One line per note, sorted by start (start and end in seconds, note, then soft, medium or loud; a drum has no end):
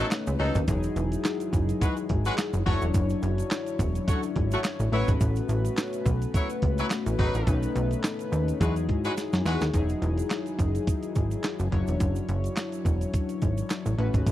0.00 0.64 A3 medium
0.00 0.64 C#4 medium
0.00 0.64 D#4 medium
0.00 0.65 B4 medium
0.11 snare loud
0.11 clap medium
0.11 closed hi-hat medium
0.11 shaker medium
0.27 0.36 C#2 medium
0.27 closed hi-hat medium
0.27 shaker medium
0.40 0.51 C#2 loud
0.40 0.58 F#3 loud
0.40 0.58 D#4 loud
0.40 0.58 A4 loud
0.40 open hi-hat medium
0.55 0.64 D#2 medium
0.55 kick loud
0.55 closed hi-hat medium
0.55 shaker soft
0.67 0.88 E1 loud
0.67 2.62 F#3 medium
0.67 2.62 D#4 medium
0.67 2.62 E4 medium
0.67 2.63 G#4 medium
0.67 kick loud
0.67 closed hi-hat loud
0.67 shaker medium
0.83 closed hi-hat medium
0.83 shaker medium
0.96 1.16 E1 loud
0.96 closed hi-hat medium
0.96 shaker soft
1.12 closed hi-hat medium
1.12 shaker medium
1.24 snare loud
1.24 clap medium
1.24 closed hi-hat medium
1.24 shaker medium
1.40 closed hi-hat medium
1.40 shaker soft
1.53 1.73 F#1 loud
1.53 kick loud
1.53 closed hi-hat medium
1.53 shaker medium
1.69 closed hi-hat soft
1.69 shaker soft
1.81 1.95 G#3 medium
1.81 1.95 F#4 medium
1.81 1.95 B4 medium
1.81 kick loud
1.81 closed hi-hat medium
1.81 shaker medium
1.97 closed hi-hat soft
1.97 shaker soft
2.09 2.30 G#1 medium
2.09 kick medium
2.09 closed hi-hat medium
2.25 2.33 G#3 loud
2.25 2.34 F#4 loud
2.25 2.34 B4 loud
2.25 closed hi-hat medium
2.25 shaker medium
2.38 snare loud
2.38 clap medium
2.38 closed hi-hat medium
2.38 shaker medium
2.54 2.62 F#1 medium
2.54 closed hi-hat medium
2.54 shaker medium
2.65 2.78 F#1 loud
2.65 4.88 F#3 medium
2.65 2.84 A3 medium
2.65 4.88 D4 medium
2.65 4.89 E4 medium
2.65 2.84 F#4 loud
2.65 2.84 C#5 loud
2.65 4.89 C#5 medium
2.65 kick medium
2.65 open hi-hat medium
2.82 2.91 E1 loud
2.82 closed hi-hat medium
2.82 shaker medium
2.94 3.14 F#1 loud
2.94 kick loud
2.94 closed hi-hat loud
2.94 shaker medium
3.10 closed hi-hat medium
3.10 shaker medium
3.23 3.43 F#1 loud
3.23 closed hi-hat medium
3.23 shaker soft
3.38 closed hi-hat medium
3.38 shaker medium
3.51 snare loud
3.51 clap medium
3.51 closed hi-hat medium
3.51 shaker medium
3.66 closed hi-hat soft
3.66 shaker soft
3.79 3.99 E1 loud
3.79 kick medium
3.79 closed hi-hat medium
3.79 shaker medium
3.95 closed hi-hat soft
3.95 shaker medium
4.08 4.21 A3 medium
4.08 4.21 F#4 medium
4.08 4.21 C#5 medium
4.08 kick loud
4.08 closed hi-hat medium
4.08 shaker medium
4.23 closed hi-hat soft
4.23 shaker soft
4.36 4.56 G#1 medium
4.36 kick medium
4.36 closed hi-hat medium
4.51 4.60 A3 loud
4.51 4.60 F#4 loud
4.51 4.60 C#5 loud
4.51 closed hi-hat medium
4.51 shaker medium
4.64 snare loud
4.64 clap medium
4.64 closed hi-hat medium
4.64 shaker medium
4.80 4.89 A1 medium
4.80 closed hi-hat medium
4.80 shaker medium
4.92 5.04 A1 loud
4.92 5.11 F#3 medium
4.92 7.43 A3 medium
4.92 7.43 C#4 medium
4.92 5.11 E4 loud
4.92 7.43 F#4 medium
4.92 7.44 B4 medium
4.92 5.11 C#5 loud
4.92 open hi-hat medium
5.08 5.17 G#1 medium
5.08 kick loud
5.08 closed hi-hat medium
5.08 shaker medium
5.21 5.41 A1 loud
5.21 kick loud
5.21 closed hi-hat medium
5.21 shaker medium
5.36 closed hi-hat medium
5.36 shaker soft
5.49 5.69 A1 loud
5.49 closed hi-hat medium
5.49 shaker soft
5.65 closed hi-hat medium
5.65 shaker medium
5.77 snare loud
5.77 clap medium
5.77 closed hi-hat medium
5.77 shaker medium
5.93 closed hi-hat medium
5.93 shaker soft
6.06 6.26 B1 loud
6.06 kick loud
6.06 closed hi-hat medium
6.06 shaker medium
6.22 closed hi-hat soft
6.22 shaker medium
6.34 6.48 F#3 medium
6.34 6.48 E4 medium
6.34 6.48 C#5 loud
6.34 kick loud
6.34 closed hi-hat medium
6.34 shaker medium
6.50 closed hi-hat medium
6.50 shaker soft
6.62 6.83 C#2 medium
6.62 kick medium
6.62 closed hi-hat medium
6.78 6.86 F#3 loud
6.78 6.86 E4 loud
6.78 6.86 B4 loud
6.78 closed hi-hat medium
6.78 shaker medium
6.90 snare loud
6.90 clap medium
6.90 closed hi-hat medium
6.90 shaker medium
7.06 7.15 A1 medium
7.06 closed hi-hat medium
7.06 shaker medium
7.19 7.30 G#1 loud
7.19 7.57 F#3 medium
7.19 7.57 D#4 medium
7.19 7.57 B4 loud
7.19 kick medium
7.19 open hi-hat medium
7.35 7.44 A1 medium
7.35 closed hi-hat medium
7.35 shaker medium
7.47 7.67 B1 loud
7.47 8.58 A3 medium
7.47 8.58 C#4 medium
7.47 8.58 D#4 medium
7.47 8.59 B4 medium
7.47 kick loud
7.47 closed hi-hat medium
7.47 shaker medium
7.63 closed hi-hat medium
7.63 shaker medium
7.76 7.96 B1 loud
7.76 closed hi-hat medium
7.76 shaker soft
7.91 closed hi-hat medium
7.91 shaker medium
8.03 snare loud
8.03 clap medium
8.03 closed hi-hat medium
8.03 shaker medium
8.19 closed hi-hat medium
8.19 shaker soft
8.32 8.52 D#2 loud
8.32 closed hi-hat medium
8.32 shaker medium
8.48 closed hi-hat medium
8.48 shaker soft
8.60 8.91 E2 loud
8.60 9.71 F#3 medium
8.60 8.74 G#3 medium
8.60 9.71 D#4 medium
8.60 9.72 E4 medium
8.60 8.74 F#4 medium
8.60 9.72 G#4 medium
8.60 8.74 B4 medium
8.60 kick loud
8.60 closed hi-hat medium
8.60 shaker medium
8.76 closed hi-hat medium
8.76 shaker soft
8.89 9.09 G#2 medium
8.89 kick medium
8.89 closed hi-hat medium
9.05 9.13 G#3 loud
9.05 9.13 F#4 loud
9.05 9.13 B4 loud
9.05 closed hi-hat medium
9.05 shaker medium
9.17 snare medium
9.17 closed hi-hat medium
9.17 shaker medium
9.33 9.42 F#2 medium
9.33 snare medium
9.33 closed hi-hat medium
9.33 shaker medium
9.45 9.57 E2 loud
9.45 9.64 G#3 medium
9.45 9.64 F#4 medium
9.45 9.64 B4 loud
9.45 snare loud
9.45 open hi-hat medium
9.45 shaker medium
9.61 9.70 D#2 medium
9.61 snare loud
9.61 closed hi-hat medium
9.61 shaker medium
9.73 9.94 E1 loud
9.73 11.68 F#3 medium
9.73 11.68 D#4 medium
9.73 11.68 E4 medium
9.73 11.68 G#4 medium
9.73 kick loud
9.73 closed hi-hat medium
9.73 shaker medium
9.89 closed hi-hat medium
9.89 shaker soft
10.02 10.22 E1 loud
10.02 closed hi-hat medium
10.02 shaker soft
10.18 closed hi-hat medium
10.18 shaker medium
10.30 snare loud
10.30 clap medium
10.30 closed hi-hat medium
10.30 shaker medium
10.46 closed hi-hat soft
10.46 shaker soft
10.59 10.79 F#1 medium
10.59 kick medium
10.59 closed hi-hat medium
10.59 shaker medium
10.75 closed hi-hat soft
10.75 shaker soft
10.87 kick loud
10.87 closed hi-hat medium
10.87 shaker medium
11.03 closed hi-hat soft
11.03 shaker soft
11.15 11.36 G#1 medium
11.15 kick medium
11.15 closed hi-hat medium
11.15 shaker medium
11.31 closed hi-hat soft
11.31 shaker medium
11.44 snare loud
11.44 clap medium
11.44 closed hi-hat medium
11.44 shaker medium
11.59 11.68 F#1 medium
11.59 closed hi-hat medium
11.59 shaker soft
11.71 11.83 F#1 loud
11.71 13.94 F#3 medium
11.71 13.94 D4 medium
11.71 13.95 E4 medium
11.71 13.95 C#5 medium
11.71 kick medium
11.71 closed hi-hat medium
11.87 11.97 E1 medium
11.87 closed hi-hat medium
11.87 shaker soft
12.00 12.20 F#1 loud
12.00 kick loud
12.00 closed hi-hat medium
12.00 shaker medium
12.16 closed hi-hat soft
12.16 shaker medium
12.29 12.49 F#1 loud
12.29 closed hi-hat medium
12.29 shaker soft
12.44 closed hi-hat soft
12.44 shaker medium
12.56 snare loud
12.56 clap medium
12.56 closed hi-hat medium
12.56 shaker medium
12.72 closed hi-hat soft
12.72 shaker soft
12.85 13.05 E1 loud
12.85 kick medium
12.85 closed hi-hat medium
12.85 shaker medium
13.01 closed hi-hat soft
13.01 shaker soft
13.14 kick loud
13.14 closed hi-hat medium
13.14 shaker medium
13.29 closed hi-hat soft
13.29 shaker soft
13.42 13.62 G#1 medium
13.42 kick medium
13.42 closed hi-hat medium
13.42 shaker soft
13.58 closed hi-hat soft
13.58 shaker medium
13.70 snare loud
13.70 clap medium
13.70 closed hi-hat medium
13.70 shaker medium
13.86 13.95 A1 medium
13.86 closed hi-hat medium
13.86 shaker medium
13.98 14.10 A1 loud
13.98 14.32 A3 medium
13.98 14.32 C#4 medium
13.98 14.32 F#4 medium
13.98 14.32 B4 medium
13.98 closed hi-hat medium
14.14 14.23 G#1 medium
14.14 kick medium
14.14 closed hi-hat medium
14.14 shaker soft
14.27 14.32 A1 loud
14.27 kick loud
14.27 closed hi-hat medium
14.27 shaker medium